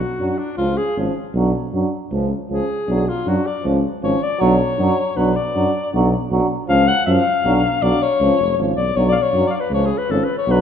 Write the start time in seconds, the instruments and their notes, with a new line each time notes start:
Already playing: alto saxophone F#4
0.19 tuba F#2, euphonium F#3, french horn D4
0.39 alto saxophone D4
0.57 tuba C#2, euphonium F3, french horn C#4, alto saxophone F4
0.77 alto saxophone G#4
0.97 tuba G#1, euphonium F3, french horn C#4
1.34 tuba B1, euphonium F#3, french horn D4
1.73 tuba F#2, euphonium F#3, french horn D4
2.12 tuba C#2, euphonium F3, french horn C#4
2.50 tuba C#2, euphonium F3, french horn C#4, alto saxophone G#4
2.88 tuba B1, euphonium F#3, french horn D4
3.09 alto saxophone F4
3.26 tuba F#2, euphonium F#3, french horn D4, alto saxophone F#4
3.47 alto saxophone D5
3.63 tuba C#2, euphonium F3, french horn C#4
4.02 tuba G#1, euphonium F3, french horn C#4, alto saxophone C#5
4.23 alto saxophone D5
4.39 tuba B1, euphonium F#3, french horn D4, alto saxophone C#5
4.79 tuba F#2, euphonium F#3, french horn D4
5.16 tuba B1, euphonium F#3, french horn D4, alto saxophone B4
5.36 alto saxophone D5
5.55 tuba F#2, euphonium F#3, french horn D4
5.94 tuba B1, euphonium F#3, french horn D4
6.31 tuba B1, euphonium F#3, french horn D4
6.68 tuba C#2, euphonium F3, french horn C#4, alto saxophone F5
6.88 alto saxophone F#5
7.06 tuba F#2, euphonium F3, french horn C#4, alto saxophone F5
7.44 tuba B1, euphonium F#3, french horn D4
7.82 tuba B1, euphonium F#3, french horn D4, alto saxophone D5
8.02 alto saxophone C#5
8.20 tuba C#2, euphonium F3, french horn C#4
8.39 tuba F1
8.58 tuba G#1, euphonium F3, french horn C#4
8.76 tuba B1, alto saxophone D5
8.96 tuba B1, euphonium F#3, french horn D4, alto saxophone C#5
9.09 alto saxophone D5 F5
9.15 alto saxophone D5
9.22 alto saxophone C#5
9.33 tuba F#2, euphonium F#3, french horn D4
9.47 alto saxophone D5 F5
9.53 alto saxophone D5
9.60 alto saxophone B4
9.71 tuba C#2, euphonium F3, french horn C#4, alto saxophone C#5
9.86 alto saxophone G#4
9.98 alto saxophone B4
10.09 tuba G#1, euphonium F3, french horn C#4, alto saxophone A4
10.25 alto saxophone B4
10.38 alto saxophone C#5
10.47 tuba B1, euphonium F#3, french horn D4
10.51 alto saxophone B4